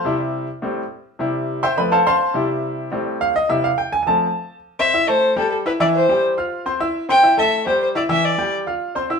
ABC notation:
X:1
M:4/4
L:1/16
Q:1/4=209
K:C
V:1 name="Violin"
z16 | z16 | z16 | z16 |
z2 e4 c4 A2 A2 B2 | d2 c4 z8 z2 | z2 g4 e4 c2 c2 d2 | e2 d4 z8 z2 |]
V:2 name="Grand piano"
[cac']2 z12 z2 | z6 [cegc']2 [Bb]2 [Acfa]2 [cfac']4- | [cfac']2 z8 z2 f2 _e2 | e2 f2 g2 _a2 [a=a]6- [_a=a] z |
z2 [Ccc']2 [Eee']2 [A,Aa]4 [G,Gg]4 [Eee']2 | [E,Ee]4 [G,Gg]4 [Fff']4 [Ccc']2 [Eee']2- | [Eee']2 [Ccc']2 [Eee']2 [A,Aa]4 [G,Gg]4 [Eee']2 | [E,Ee]4 [G,Gg]4 [Fff']4 [Ccc']2 [Eee']2 |]
V:3 name="Grand piano" clef=bass
[C,G,E]6 z2 [A,,G,C]2 z6 | [C,G,E]6 z2 [F,A,C]2 z6 | [C,G,E]8 [A,,G,C]6 z2 | [C,G,E]2 z6 [F,A,C]2 z6 |
z16 | z16 | z16 | z16 |]